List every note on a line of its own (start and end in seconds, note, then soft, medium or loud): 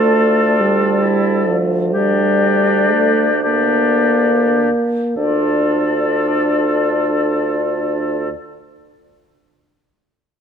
0.00 4.72 D2 soft
0.00 0.62 A3 medium
0.00 1.05 F4 soft
0.00 1.57 A4 soft
0.00 1.57 D5 soft
0.60 1.48 G3 medium
1.03 1.61 E4 soft
1.47 1.95 F3 soft
1.93 2.94 G3 medium
1.93 3.40 D4 soft
1.93 3.40 G4 soft
1.93 3.40 D5 soft
2.92 3.30 A3 medium
3.43 5.14 A#3 medium
3.43 4.70 D4 soft
3.43 4.70 G4 soft
3.43 4.70 D5 soft
5.16 8.30 D2 soft
5.16 8.31 D4 soft
5.16 8.31 F4 soft
5.16 8.29 A4 soft
5.16 8.29 D5 soft